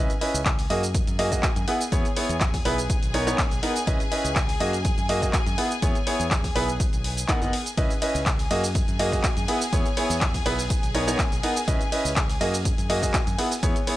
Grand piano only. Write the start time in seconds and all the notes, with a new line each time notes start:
0.21 C#4 E4 B4 D#5
0.70 A#3 F#4 G#4 D#5
1.19 A#3 F#4 G#4 D#5
1.32 A#3 F#4 G#4 D#5
1.68 B3 E4 G#4 F#5
1.92 B3 E4 G#4 C#5
2.16 B3 E4 G#4 C#5
2.65 B3 E4 G#4 B4
3.14 B3 D#4 A#4 C#5
3.27 B3 D#4 A#4 C#5
3.63 B3 D#4 A#4 F#5
3.87 C#4 E4 B4 D#5
4.12 C#4 E4 B4 D#5
4.60 A#3 F#4 G#4 D#5
5.09 A#3 F#4 G#4 D#5
5.22 A#3 F#4 G#4 D#5
5.58 B3 E4 G#4 F#5
5.82 B3 E4 G#4 C#5
6.07 B3 E4 G#4 C#5
6.56 B3 E4 G#4 B4
7.29 B3 D#4 A#4 F#5
7.42 B3 D#4 A#4 F#5
7.77 C#4 E4 B4 D#5
8.02 C#4 E4 B4 D#5
8.51 A#3 F#4 G#4 D#5
8.99 A#3 F#4 G#4 D#5
9.12 A#3 F#4 G#4 D#5
9.48 B3 E4 G#4 F#5
9.73 B3 E4 G#4 C#5
9.97 B3 E4 G#4 C#5
10.46 B3 E4 G#4 B4
10.95 B3 D#4 A#4 C#5
11.07 B3 D#4 A#4 C#5
11.43 B3 D#4 A#4 F#5
11.68 C#4 E4 B4 D#5
11.92 C#4 E4 B4 D#5
12.41 A#3 F#4 G#4 D#5
12.90 A#3 F#4 G#4 D#5
13.03 A#3 F#4 G#4 D#5
13.38 B3 E4 G#4 F#5
13.63 B3 E4 G#4 C#5
13.87 B3 E4 G#4 C#5